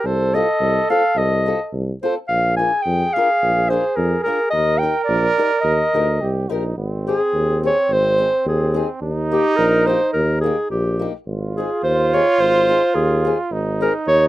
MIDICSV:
0, 0, Header, 1, 5, 480
1, 0, Start_track
1, 0, Key_signature, -3, "major"
1, 0, Tempo, 560224
1, 45, Time_signature, 2, 2, 24, 8
1, 5802, Key_signature, -4, "major"
1, 12238, End_track
2, 0, Start_track
2, 0, Title_t, "Clarinet"
2, 0, Program_c, 0, 71
2, 53, Note_on_c, 0, 72, 83
2, 295, Note_on_c, 0, 75, 91
2, 308, Note_off_c, 0, 72, 0
2, 768, Note_off_c, 0, 75, 0
2, 773, Note_on_c, 0, 77, 89
2, 1007, Note_on_c, 0, 75, 84
2, 1020, Note_off_c, 0, 77, 0
2, 1482, Note_off_c, 0, 75, 0
2, 1735, Note_on_c, 0, 72, 82
2, 1837, Note_off_c, 0, 72, 0
2, 1956, Note_on_c, 0, 77, 90
2, 2193, Note_off_c, 0, 77, 0
2, 2198, Note_on_c, 0, 80, 81
2, 2416, Note_on_c, 0, 79, 86
2, 2429, Note_off_c, 0, 80, 0
2, 2684, Note_on_c, 0, 77, 102
2, 2697, Note_off_c, 0, 79, 0
2, 3163, Note_on_c, 0, 72, 83
2, 3176, Note_off_c, 0, 77, 0
2, 3393, Note_on_c, 0, 70, 69
2, 3406, Note_off_c, 0, 72, 0
2, 3620, Note_off_c, 0, 70, 0
2, 3625, Note_on_c, 0, 70, 84
2, 3847, Note_off_c, 0, 70, 0
2, 3859, Note_on_c, 0, 75, 92
2, 4099, Note_on_c, 0, 79, 79
2, 4112, Note_off_c, 0, 75, 0
2, 4316, Note_off_c, 0, 79, 0
2, 4321, Note_on_c, 0, 74, 72
2, 4783, Note_off_c, 0, 74, 0
2, 4803, Note_on_c, 0, 75, 86
2, 5522, Note_off_c, 0, 75, 0
2, 6063, Note_on_c, 0, 68, 85
2, 6509, Note_off_c, 0, 68, 0
2, 6565, Note_on_c, 0, 73, 94
2, 6789, Note_on_c, 0, 72, 106
2, 6802, Note_off_c, 0, 73, 0
2, 7258, Note_off_c, 0, 72, 0
2, 7265, Note_on_c, 0, 68, 72
2, 7595, Note_off_c, 0, 68, 0
2, 7986, Note_on_c, 0, 67, 82
2, 8197, Note_on_c, 0, 70, 95
2, 8210, Note_off_c, 0, 67, 0
2, 8450, Note_on_c, 0, 72, 93
2, 8463, Note_off_c, 0, 70, 0
2, 8675, Note_off_c, 0, 72, 0
2, 8680, Note_on_c, 0, 70, 75
2, 8914, Note_off_c, 0, 70, 0
2, 8919, Note_on_c, 0, 68, 79
2, 9139, Note_off_c, 0, 68, 0
2, 9172, Note_on_c, 0, 67, 67
2, 9510, Note_off_c, 0, 67, 0
2, 9911, Note_on_c, 0, 68, 77
2, 10119, Note_off_c, 0, 68, 0
2, 10140, Note_on_c, 0, 72, 89
2, 10398, Note_on_c, 0, 73, 95
2, 10411, Note_off_c, 0, 72, 0
2, 10626, Note_on_c, 0, 72, 99
2, 10639, Note_off_c, 0, 73, 0
2, 11094, Note_on_c, 0, 68, 76
2, 11106, Note_off_c, 0, 72, 0
2, 11459, Note_off_c, 0, 68, 0
2, 11839, Note_on_c, 0, 70, 85
2, 11938, Note_off_c, 0, 70, 0
2, 12061, Note_on_c, 0, 73, 102
2, 12231, Note_off_c, 0, 73, 0
2, 12238, End_track
3, 0, Start_track
3, 0, Title_t, "Trumpet"
3, 0, Program_c, 1, 56
3, 45, Note_on_c, 1, 69, 96
3, 1731, Note_off_c, 1, 69, 0
3, 1961, Note_on_c, 1, 68, 87
3, 3880, Note_on_c, 1, 70, 104
3, 3892, Note_off_c, 1, 68, 0
3, 5319, Note_on_c, 1, 67, 73
3, 5332, Note_off_c, 1, 70, 0
3, 5577, Note_on_c, 1, 63, 61
3, 5590, Note_off_c, 1, 67, 0
3, 5799, Note_off_c, 1, 63, 0
3, 5805, Note_on_c, 1, 60, 80
3, 7691, Note_off_c, 1, 60, 0
3, 7721, Note_on_c, 1, 63, 123
3, 9379, Note_off_c, 1, 63, 0
3, 9654, Note_on_c, 1, 65, 113
3, 11586, Note_on_c, 1, 63, 98
3, 11599, Note_off_c, 1, 65, 0
3, 12238, Note_off_c, 1, 63, 0
3, 12238, End_track
4, 0, Start_track
4, 0, Title_t, "Steel-string acoustic guitar"
4, 0, Program_c, 2, 25
4, 293, Note_on_c, 2, 60, 48
4, 300, Note_on_c, 2, 65, 58
4, 309, Note_on_c, 2, 69, 62
4, 395, Note_off_c, 2, 60, 0
4, 399, Note_off_c, 2, 65, 0
4, 403, Note_off_c, 2, 69, 0
4, 768, Note_on_c, 2, 60, 53
4, 772, Note_on_c, 2, 65, 52
4, 785, Note_on_c, 2, 69, 70
4, 872, Note_off_c, 2, 60, 0
4, 872, Note_off_c, 2, 65, 0
4, 880, Note_off_c, 2, 69, 0
4, 1250, Note_on_c, 2, 60, 52
4, 1260, Note_on_c, 2, 65, 45
4, 1268, Note_on_c, 2, 69, 62
4, 1352, Note_off_c, 2, 60, 0
4, 1357, Note_off_c, 2, 65, 0
4, 1361, Note_off_c, 2, 69, 0
4, 1738, Note_on_c, 2, 60, 56
4, 1743, Note_on_c, 2, 65, 50
4, 1758, Note_on_c, 2, 69, 57
4, 1838, Note_off_c, 2, 60, 0
4, 1841, Note_off_c, 2, 65, 0
4, 1848, Note_off_c, 2, 69, 0
4, 2216, Note_on_c, 2, 62, 47
4, 2221, Note_on_c, 2, 65, 50
4, 2235, Note_on_c, 2, 70, 56
4, 2318, Note_off_c, 2, 62, 0
4, 2320, Note_off_c, 2, 65, 0
4, 2328, Note_off_c, 2, 70, 0
4, 2708, Note_on_c, 2, 62, 64
4, 2715, Note_on_c, 2, 65, 61
4, 2728, Note_on_c, 2, 70, 68
4, 2803, Note_off_c, 2, 62, 0
4, 2807, Note_off_c, 2, 65, 0
4, 2813, Note_off_c, 2, 70, 0
4, 3173, Note_on_c, 2, 62, 53
4, 3186, Note_on_c, 2, 65, 51
4, 3196, Note_on_c, 2, 70, 65
4, 3274, Note_off_c, 2, 62, 0
4, 3281, Note_off_c, 2, 65, 0
4, 3286, Note_off_c, 2, 70, 0
4, 3650, Note_on_c, 2, 62, 52
4, 3658, Note_on_c, 2, 65, 52
4, 3666, Note_on_c, 2, 70, 69
4, 3751, Note_off_c, 2, 62, 0
4, 3755, Note_off_c, 2, 65, 0
4, 3760, Note_off_c, 2, 70, 0
4, 4138, Note_on_c, 2, 63, 51
4, 4144, Note_on_c, 2, 67, 47
4, 4154, Note_on_c, 2, 70, 58
4, 4234, Note_off_c, 2, 63, 0
4, 4237, Note_off_c, 2, 67, 0
4, 4242, Note_off_c, 2, 70, 0
4, 4609, Note_on_c, 2, 63, 55
4, 4616, Note_on_c, 2, 67, 54
4, 4621, Note_on_c, 2, 70, 71
4, 4709, Note_off_c, 2, 63, 0
4, 4713, Note_off_c, 2, 67, 0
4, 4715, Note_off_c, 2, 70, 0
4, 5089, Note_on_c, 2, 63, 52
4, 5097, Note_on_c, 2, 67, 49
4, 5106, Note_on_c, 2, 70, 57
4, 5192, Note_off_c, 2, 63, 0
4, 5195, Note_off_c, 2, 67, 0
4, 5200, Note_off_c, 2, 70, 0
4, 5566, Note_on_c, 2, 63, 67
4, 5570, Note_on_c, 2, 67, 66
4, 5584, Note_on_c, 2, 70, 70
4, 5672, Note_off_c, 2, 63, 0
4, 5675, Note_off_c, 2, 67, 0
4, 5682, Note_off_c, 2, 70, 0
4, 6058, Note_on_c, 2, 60, 47
4, 6065, Note_on_c, 2, 63, 45
4, 6073, Note_on_c, 2, 68, 60
4, 6161, Note_off_c, 2, 60, 0
4, 6164, Note_off_c, 2, 63, 0
4, 6168, Note_off_c, 2, 68, 0
4, 6541, Note_on_c, 2, 60, 57
4, 6542, Note_on_c, 2, 63, 49
4, 6556, Note_on_c, 2, 68, 59
4, 6643, Note_off_c, 2, 63, 0
4, 6644, Note_off_c, 2, 60, 0
4, 6651, Note_off_c, 2, 68, 0
4, 7010, Note_on_c, 2, 60, 52
4, 7018, Note_on_c, 2, 63, 47
4, 7027, Note_on_c, 2, 68, 54
4, 7118, Note_off_c, 2, 60, 0
4, 7121, Note_off_c, 2, 63, 0
4, 7126, Note_off_c, 2, 68, 0
4, 7490, Note_on_c, 2, 60, 60
4, 7494, Note_on_c, 2, 63, 51
4, 7507, Note_on_c, 2, 68, 67
4, 7596, Note_off_c, 2, 60, 0
4, 7598, Note_off_c, 2, 63, 0
4, 7604, Note_off_c, 2, 68, 0
4, 7981, Note_on_c, 2, 58, 58
4, 7987, Note_on_c, 2, 63, 49
4, 8001, Note_on_c, 2, 67, 64
4, 8080, Note_off_c, 2, 58, 0
4, 8083, Note_off_c, 2, 63, 0
4, 8090, Note_off_c, 2, 67, 0
4, 8457, Note_on_c, 2, 58, 48
4, 8465, Note_on_c, 2, 63, 47
4, 8478, Note_on_c, 2, 67, 57
4, 8558, Note_off_c, 2, 58, 0
4, 8562, Note_off_c, 2, 63, 0
4, 8569, Note_off_c, 2, 67, 0
4, 8941, Note_on_c, 2, 58, 52
4, 8956, Note_on_c, 2, 63, 41
4, 8962, Note_on_c, 2, 67, 63
4, 9040, Note_off_c, 2, 58, 0
4, 9047, Note_off_c, 2, 63, 0
4, 9050, Note_off_c, 2, 67, 0
4, 9419, Note_on_c, 2, 58, 61
4, 9435, Note_on_c, 2, 63, 47
4, 9440, Note_on_c, 2, 67, 66
4, 9521, Note_off_c, 2, 58, 0
4, 9529, Note_off_c, 2, 63, 0
4, 9531, Note_off_c, 2, 67, 0
4, 9919, Note_on_c, 2, 60, 49
4, 9924, Note_on_c, 2, 63, 42
4, 9937, Note_on_c, 2, 68, 57
4, 10013, Note_off_c, 2, 60, 0
4, 10015, Note_off_c, 2, 63, 0
4, 10021, Note_off_c, 2, 68, 0
4, 10396, Note_on_c, 2, 60, 56
4, 10405, Note_on_c, 2, 63, 55
4, 10411, Note_on_c, 2, 68, 58
4, 10493, Note_off_c, 2, 60, 0
4, 10495, Note_off_c, 2, 63, 0
4, 10500, Note_off_c, 2, 68, 0
4, 10869, Note_on_c, 2, 60, 50
4, 10878, Note_on_c, 2, 63, 56
4, 10882, Note_on_c, 2, 68, 58
4, 10969, Note_off_c, 2, 60, 0
4, 10974, Note_off_c, 2, 63, 0
4, 10976, Note_off_c, 2, 68, 0
4, 11350, Note_on_c, 2, 60, 56
4, 11361, Note_on_c, 2, 63, 50
4, 11367, Note_on_c, 2, 68, 61
4, 11450, Note_off_c, 2, 60, 0
4, 11456, Note_off_c, 2, 63, 0
4, 11457, Note_off_c, 2, 68, 0
4, 11830, Note_on_c, 2, 60, 53
4, 11838, Note_on_c, 2, 63, 54
4, 11842, Note_on_c, 2, 68, 62
4, 11929, Note_off_c, 2, 60, 0
4, 11933, Note_off_c, 2, 63, 0
4, 11935, Note_off_c, 2, 68, 0
4, 12238, End_track
5, 0, Start_track
5, 0, Title_t, "Tuba"
5, 0, Program_c, 3, 58
5, 37, Note_on_c, 3, 36, 80
5, 349, Note_off_c, 3, 36, 0
5, 517, Note_on_c, 3, 36, 82
5, 680, Note_off_c, 3, 36, 0
5, 989, Note_on_c, 3, 36, 74
5, 1304, Note_off_c, 3, 36, 0
5, 1480, Note_on_c, 3, 36, 77
5, 1644, Note_off_c, 3, 36, 0
5, 1962, Note_on_c, 3, 34, 70
5, 2275, Note_off_c, 3, 34, 0
5, 2447, Note_on_c, 3, 41, 84
5, 2609, Note_off_c, 3, 41, 0
5, 2931, Note_on_c, 3, 34, 80
5, 3238, Note_off_c, 3, 34, 0
5, 3402, Note_on_c, 3, 41, 86
5, 3563, Note_off_c, 3, 41, 0
5, 3882, Note_on_c, 3, 39, 71
5, 4190, Note_off_c, 3, 39, 0
5, 4356, Note_on_c, 3, 34, 93
5, 4518, Note_off_c, 3, 34, 0
5, 4828, Note_on_c, 3, 39, 76
5, 4994, Note_off_c, 3, 39, 0
5, 5086, Note_on_c, 3, 38, 69
5, 5294, Note_off_c, 3, 38, 0
5, 5327, Note_on_c, 3, 36, 73
5, 5552, Note_off_c, 3, 36, 0
5, 5574, Note_on_c, 3, 34, 72
5, 5780, Note_off_c, 3, 34, 0
5, 5802, Note_on_c, 3, 32, 67
5, 6117, Note_off_c, 3, 32, 0
5, 6279, Note_on_c, 3, 39, 75
5, 6595, Note_off_c, 3, 39, 0
5, 6762, Note_on_c, 3, 32, 78
5, 7076, Note_off_c, 3, 32, 0
5, 7244, Note_on_c, 3, 39, 85
5, 7555, Note_off_c, 3, 39, 0
5, 7719, Note_on_c, 3, 39, 65
5, 8032, Note_off_c, 3, 39, 0
5, 8209, Note_on_c, 3, 34, 86
5, 8518, Note_off_c, 3, 34, 0
5, 8691, Note_on_c, 3, 39, 84
5, 9000, Note_off_c, 3, 39, 0
5, 9173, Note_on_c, 3, 34, 79
5, 9483, Note_off_c, 3, 34, 0
5, 9649, Note_on_c, 3, 32, 68
5, 9962, Note_off_c, 3, 32, 0
5, 10135, Note_on_c, 3, 39, 77
5, 10447, Note_off_c, 3, 39, 0
5, 10610, Note_on_c, 3, 32, 72
5, 10923, Note_off_c, 3, 32, 0
5, 11093, Note_on_c, 3, 39, 87
5, 11405, Note_off_c, 3, 39, 0
5, 11570, Note_on_c, 3, 32, 75
5, 11882, Note_off_c, 3, 32, 0
5, 12051, Note_on_c, 3, 39, 80
5, 12238, Note_off_c, 3, 39, 0
5, 12238, End_track
0, 0, End_of_file